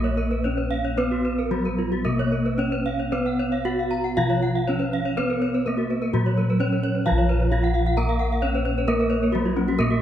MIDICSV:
0, 0, Header, 1, 6, 480
1, 0, Start_track
1, 0, Tempo, 534759
1, 879, Time_signature, 4, 2, 24, 8
1, 3277, Tempo, 507185
1, 4717, Tempo, 476948
1, 6157, Tempo, 454545
1, 9763, End_track
2, 0, Start_track
2, 0, Title_t, "Bronze metallophone"
2, 0, Program_c, 0, 11
2, 36, Note_on_c, 0, 73, 67
2, 157, Note_off_c, 0, 73, 0
2, 278, Note_on_c, 0, 71, 65
2, 398, Note_off_c, 0, 71, 0
2, 633, Note_on_c, 0, 77, 77
2, 756, Note_off_c, 0, 77, 0
2, 1000, Note_on_c, 0, 66, 62
2, 1120, Note_off_c, 0, 66, 0
2, 1244, Note_on_c, 0, 70, 60
2, 1362, Note_off_c, 0, 70, 0
2, 1602, Note_on_c, 0, 65, 68
2, 1721, Note_off_c, 0, 65, 0
2, 1969, Note_on_c, 0, 73, 73
2, 2085, Note_off_c, 0, 73, 0
2, 2203, Note_on_c, 0, 71, 60
2, 2323, Note_off_c, 0, 71, 0
2, 2565, Note_on_c, 0, 77, 77
2, 2684, Note_off_c, 0, 77, 0
2, 2927, Note_on_c, 0, 78, 58
2, 3044, Note_off_c, 0, 78, 0
2, 3160, Note_on_c, 0, 77, 61
2, 3278, Note_off_c, 0, 77, 0
2, 3520, Note_on_c, 0, 82, 75
2, 3645, Note_off_c, 0, 82, 0
2, 3889, Note_on_c, 0, 73, 66
2, 4010, Note_off_c, 0, 73, 0
2, 4132, Note_on_c, 0, 77, 68
2, 4250, Note_off_c, 0, 77, 0
2, 4491, Note_on_c, 0, 77, 75
2, 4605, Note_off_c, 0, 77, 0
2, 4844, Note_on_c, 0, 70, 62
2, 4965, Note_off_c, 0, 70, 0
2, 5090, Note_on_c, 0, 71, 61
2, 5210, Note_off_c, 0, 71, 0
2, 5452, Note_on_c, 0, 71, 60
2, 5571, Note_off_c, 0, 71, 0
2, 5814, Note_on_c, 0, 73, 63
2, 5928, Note_off_c, 0, 73, 0
2, 6049, Note_on_c, 0, 71, 67
2, 6162, Note_off_c, 0, 71, 0
2, 6402, Note_on_c, 0, 73, 82
2, 6523, Note_off_c, 0, 73, 0
2, 6765, Note_on_c, 0, 73, 69
2, 6884, Note_off_c, 0, 73, 0
2, 7001, Note_on_c, 0, 73, 56
2, 7122, Note_off_c, 0, 73, 0
2, 7245, Note_on_c, 0, 78, 73
2, 7363, Note_off_c, 0, 78, 0
2, 7488, Note_on_c, 0, 78, 72
2, 7605, Note_off_c, 0, 78, 0
2, 7727, Note_on_c, 0, 77, 71
2, 7844, Note_off_c, 0, 77, 0
2, 7973, Note_on_c, 0, 77, 71
2, 8087, Note_off_c, 0, 77, 0
2, 8210, Note_on_c, 0, 71, 70
2, 8325, Note_off_c, 0, 71, 0
2, 8454, Note_on_c, 0, 71, 68
2, 8567, Note_off_c, 0, 71, 0
2, 8691, Note_on_c, 0, 71, 74
2, 8805, Note_off_c, 0, 71, 0
2, 8929, Note_on_c, 0, 70, 64
2, 9044, Note_off_c, 0, 70, 0
2, 9169, Note_on_c, 0, 65, 64
2, 9284, Note_off_c, 0, 65, 0
2, 9408, Note_on_c, 0, 66, 80
2, 9523, Note_off_c, 0, 66, 0
2, 9644, Note_on_c, 0, 66, 73
2, 9762, Note_off_c, 0, 66, 0
2, 9763, End_track
3, 0, Start_track
3, 0, Title_t, "Bronze metallophone"
3, 0, Program_c, 1, 11
3, 155, Note_on_c, 1, 70, 80
3, 276, Note_off_c, 1, 70, 0
3, 397, Note_on_c, 1, 73, 78
3, 516, Note_on_c, 1, 71, 63
3, 518, Note_off_c, 1, 73, 0
3, 638, Note_off_c, 1, 71, 0
3, 759, Note_on_c, 1, 73, 70
3, 878, Note_on_c, 1, 71, 86
3, 879, Note_off_c, 1, 73, 0
3, 999, Note_off_c, 1, 71, 0
3, 1121, Note_on_c, 1, 71, 67
3, 1241, Note_off_c, 1, 71, 0
3, 1356, Note_on_c, 1, 66, 68
3, 1478, Note_off_c, 1, 66, 0
3, 1482, Note_on_c, 1, 70, 74
3, 1601, Note_off_c, 1, 70, 0
3, 1722, Note_on_c, 1, 66, 73
3, 1837, Note_on_c, 1, 70, 79
3, 1842, Note_off_c, 1, 66, 0
3, 1959, Note_off_c, 1, 70, 0
3, 2081, Note_on_c, 1, 70, 63
3, 2201, Note_off_c, 1, 70, 0
3, 2325, Note_on_c, 1, 73, 89
3, 2443, Note_off_c, 1, 73, 0
3, 2444, Note_on_c, 1, 71, 73
3, 2563, Note_off_c, 1, 71, 0
3, 2688, Note_on_c, 1, 73, 67
3, 2802, Note_on_c, 1, 71, 82
3, 2805, Note_off_c, 1, 73, 0
3, 2922, Note_off_c, 1, 71, 0
3, 3047, Note_on_c, 1, 73, 72
3, 3163, Note_off_c, 1, 73, 0
3, 3283, Note_on_c, 1, 78, 66
3, 3404, Note_off_c, 1, 78, 0
3, 3410, Note_on_c, 1, 77, 67
3, 3529, Note_off_c, 1, 77, 0
3, 3648, Note_on_c, 1, 78, 69
3, 3767, Note_on_c, 1, 77, 101
3, 3769, Note_off_c, 1, 78, 0
3, 3889, Note_off_c, 1, 77, 0
3, 4010, Note_on_c, 1, 78, 76
3, 4130, Note_off_c, 1, 78, 0
3, 4247, Note_on_c, 1, 73, 83
3, 4359, Note_on_c, 1, 71, 64
3, 4366, Note_off_c, 1, 73, 0
3, 4481, Note_off_c, 1, 71, 0
3, 4605, Note_on_c, 1, 73, 75
3, 4718, Note_on_c, 1, 71, 98
3, 4720, Note_off_c, 1, 73, 0
3, 4842, Note_off_c, 1, 71, 0
3, 4963, Note_on_c, 1, 73, 74
3, 5086, Note_off_c, 1, 73, 0
3, 5207, Note_on_c, 1, 70, 80
3, 5322, Note_on_c, 1, 66, 65
3, 5329, Note_off_c, 1, 70, 0
3, 5446, Note_off_c, 1, 66, 0
3, 5568, Note_on_c, 1, 70, 73
3, 5685, Note_on_c, 1, 66, 86
3, 5688, Note_off_c, 1, 70, 0
3, 5805, Note_off_c, 1, 66, 0
3, 5927, Note_on_c, 1, 70, 70
3, 6043, Note_off_c, 1, 70, 0
3, 6158, Note_on_c, 1, 73, 83
3, 6280, Note_off_c, 1, 73, 0
3, 6283, Note_on_c, 1, 70, 62
3, 6403, Note_off_c, 1, 70, 0
3, 6525, Note_on_c, 1, 71, 53
3, 6637, Note_on_c, 1, 77, 100
3, 6644, Note_off_c, 1, 71, 0
3, 6760, Note_off_c, 1, 77, 0
3, 6885, Note_on_c, 1, 71, 71
3, 7004, Note_off_c, 1, 71, 0
3, 7118, Note_on_c, 1, 77, 65
3, 7240, Note_off_c, 1, 77, 0
3, 7359, Note_on_c, 1, 77, 85
3, 7480, Note_off_c, 1, 77, 0
3, 7601, Note_on_c, 1, 82, 88
3, 7721, Note_off_c, 1, 82, 0
3, 7836, Note_on_c, 1, 78, 79
3, 7958, Note_off_c, 1, 78, 0
3, 8076, Note_on_c, 1, 73, 86
3, 8199, Note_off_c, 1, 73, 0
3, 8322, Note_on_c, 1, 73, 86
3, 8441, Note_off_c, 1, 73, 0
3, 8558, Note_on_c, 1, 70, 106
3, 8679, Note_off_c, 1, 70, 0
3, 8792, Note_on_c, 1, 73, 81
3, 8916, Note_off_c, 1, 73, 0
3, 9030, Note_on_c, 1, 66, 82
3, 9155, Note_off_c, 1, 66, 0
3, 9285, Note_on_c, 1, 61, 80
3, 9402, Note_off_c, 1, 61, 0
3, 9518, Note_on_c, 1, 70, 114
3, 9639, Note_off_c, 1, 70, 0
3, 9763, End_track
4, 0, Start_track
4, 0, Title_t, "Bronze metallophone"
4, 0, Program_c, 2, 11
4, 0, Note_on_c, 2, 58, 79
4, 402, Note_off_c, 2, 58, 0
4, 408, Note_on_c, 2, 61, 68
4, 875, Note_on_c, 2, 59, 94
4, 884, Note_off_c, 2, 61, 0
4, 1358, Note_off_c, 2, 59, 0
4, 1358, Note_on_c, 2, 54, 89
4, 1840, Note_off_c, 2, 54, 0
4, 1840, Note_on_c, 2, 58, 86
4, 2315, Note_on_c, 2, 61, 81
4, 2321, Note_off_c, 2, 58, 0
4, 2799, Note_off_c, 2, 61, 0
4, 2805, Note_on_c, 2, 59, 91
4, 3277, Note_on_c, 2, 66, 102
4, 3279, Note_off_c, 2, 59, 0
4, 3768, Note_off_c, 2, 66, 0
4, 3770, Note_on_c, 2, 65, 95
4, 4249, Note_off_c, 2, 65, 0
4, 4260, Note_on_c, 2, 61, 79
4, 4720, Note_on_c, 2, 59, 97
4, 4725, Note_off_c, 2, 61, 0
4, 5209, Note_off_c, 2, 59, 0
4, 5222, Note_on_c, 2, 58, 80
4, 5689, Note_on_c, 2, 54, 79
4, 5695, Note_off_c, 2, 58, 0
4, 6151, Note_on_c, 2, 61, 79
4, 6159, Note_off_c, 2, 54, 0
4, 6639, Note_off_c, 2, 61, 0
4, 6654, Note_on_c, 2, 65, 85
4, 7111, Note_off_c, 2, 65, 0
4, 7123, Note_on_c, 2, 65, 93
4, 7602, Note_off_c, 2, 65, 0
4, 7604, Note_on_c, 2, 70, 79
4, 8082, Note_off_c, 2, 70, 0
4, 8082, Note_on_c, 2, 61, 71
4, 8561, Note_off_c, 2, 61, 0
4, 8562, Note_on_c, 2, 58, 99
4, 9041, Note_off_c, 2, 58, 0
4, 9058, Note_on_c, 2, 54, 95
4, 9528, Note_off_c, 2, 54, 0
4, 9538, Note_on_c, 2, 58, 103
4, 9763, Note_off_c, 2, 58, 0
4, 9763, End_track
5, 0, Start_track
5, 0, Title_t, "Kettle gongs"
5, 0, Program_c, 3, 14
5, 0, Note_on_c, 3, 34, 95
5, 0, Note_on_c, 3, 70, 67
5, 359, Note_off_c, 3, 70, 0
5, 400, Note_on_c, 3, 59, 40
5, 472, Note_off_c, 3, 59, 0
5, 881, Note_on_c, 3, 71, 72
5, 1368, Note_on_c, 3, 59, 38
5, 1440, Note_off_c, 3, 59, 0
5, 1825, Note_off_c, 3, 34, 0
5, 1845, Note_on_c, 3, 47, 52
5, 2287, Note_off_c, 3, 71, 0
5, 2324, Note_on_c, 3, 59, 49
5, 2396, Note_off_c, 3, 59, 0
5, 2808, Note_on_c, 3, 71, 65
5, 3244, Note_off_c, 3, 47, 0
5, 3285, Note_on_c, 3, 59, 42
5, 3361, Note_off_c, 3, 59, 0
5, 3775, Note_on_c, 3, 47, 62
5, 4214, Note_off_c, 3, 71, 0
5, 4255, Note_on_c, 3, 59, 43
5, 4331, Note_off_c, 3, 59, 0
5, 4726, Note_on_c, 3, 71, 77
5, 5171, Note_off_c, 3, 47, 0
5, 5211, Note_on_c, 3, 59, 43
5, 5292, Note_off_c, 3, 59, 0
5, 5686, Note_on_c, 3, 46, 67
5, 6122, Note_off_c, 3, 71, 0
5, 6160, Note_on_c, 3, 59, 36
5, 6244, Note_off_c, 3, 59, 0
5, 6642, Note_on_c, 3, 65, 69
5, 6696, Note_on_c, 3, 34, 99
5, 7079, Note_off_c, 3, 46, 0
5, 7123, Note_on_c, 3, 59, 41
5, 7207, Note_off_c, 3, 59, 0
5, 8038, Note_off_c, 3, 65, 0
5, 8084, Note_on_c, 3, 59, 53
5, 8168, Note_off_c, 3, 59, 0
5, 8564, Note_on_c, 3, 70, 72
5, 9041, Note_on_c, 3, 59, 48
5, 9126, Note_off_c, 3, 59, 0
5, 9504, Note_off_c, 3, 34, 0
5, 9526, Note_on_c, 3, 46, 65
5, 9763, Note_off_c, 3, 46, 0
5, 9763, Note_off_c, 3, 70, 0
5, 9763, End_track
6, 0, Start_track
6, 0, Title_t, "Bronze metallophone"
6, 0, Program_c, 4, 11
6, 0, Note_on_c, 4, 58, 67
6, 880, Note_off_c, 4, 58, 0
6, 884, Note_on_c, 4, 59, 87
6, 1841, Note_on_c, 4, 58, 70
6, 1843, Note_off_c, 4, 59, 0
6, 2803, Note_off_c, 4, 58, 0
6, 2804, Note_on_c, 4, 59, 86
6, 3770, Note_off_c, 4, 59, 0
6, 3770, Note_on_c, 4, 53, 81
6, 4715, Note_on_c, 4, 59, 68
6, 4719, Note_off_c, 4, 53, 0
6, 5686, Note_off_c, 4, 59, 0
6, 5691, Note_on_c, 4, 54, 75
6, 6644, Note_off_c, 4, 54, 0
6, 6645, Note_on_c, 4, 53, 90
6, 7603, Note_off_c, 4, 53, 0
6, 7607, Note_on_c, 4, 58, 77
6, 8563, Note_off_c, 4, 58, 0
6, 8564, Note_on_c, 4, 58, 85
6, 9508, Note_off_c, 4, 58, 0
6, 9521, Note_on_c, 4, 58, 86
6, 9763, Note_off_c, 4, 58, 0
6, 9763, End_track
0, 0, End_of_file